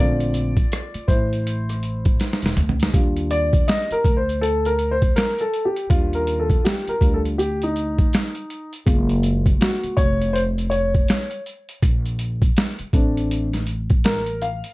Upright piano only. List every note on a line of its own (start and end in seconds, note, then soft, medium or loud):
0.00 0.50 D3 medium
0.00 0.50 A3 soft
0.00 0.50 C4 medium
0.00 1.05 F4 medium
0.00 1.11 D5 medium
1.08 2.53 E4 medium
1.08 2.52 C5 medium
2.94 4.01 G3 medium
2.94 4.01 D4 soft
2.94 4.01 F4 medium
3.31 3.65 D5 medium
3.68 3.93 D#5 medium
3.92 4.15 A#4 medium
4.17 4.43 C5 medium
4.41 4.67 A4 loud
4.66 4.92 A#4 medium
4.91 5.17 C5 medium
5.16 5.41 A#4 medium
5.41 5.66 A4 medium
5.65 5.88 G4 medium
5.89 6.97 G3 medium
5.89 6.97 D4 medium
5.89 6.98 F4 medium
6.15 6.40 A#4 medium
6.40 6.65 A4 medium
6.65 6.90 G4 medium
6.89 7.14 A#4 medium
7.01 7.34 G3 soft
7.01 7.35 D4 soft
7.01 7.35 F4 medium
7.14 7.20 A4 medium
7.38 7.61 G4 medium
7.63 8.70 D#4 medium
8.86 9.93 G#3 medium
8.86 9.94 A#3 soft
8.86 9.94 F4 medium
9.61 9.99 F#4 medium
9.97 10.35 C#5 loud
10.33 10.42 C5 loud
10.70 11.41 C#5 medium
12.93 13.46 A3 medium
12.93 13.46 C4 soft
12.93 13.47 D4 medium
14.05 14.43 A#4 medium
14.42 14.73 F5 medium